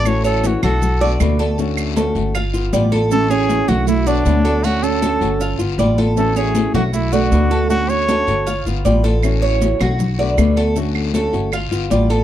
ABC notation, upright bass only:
X:1
M:4/4
L:1/8
Q:1/4=157
K:A
V:1 name="Upright bass" clef=bass
A,,,3 B,,,3 D,,2- | D,,3 =G,,,3 A,,,2- | A,,,3 B,,,3 D,,2- | D,,3 =G,,,2 G,,, A,,,2- |
A,,,3 B,,,3 D,,2- | D,,3 =G,,,2 G,,, A,,,2- | A,,,3 B,,,3 D,,2- | D,,3 =G,,,2 G,,, A,,,2 |]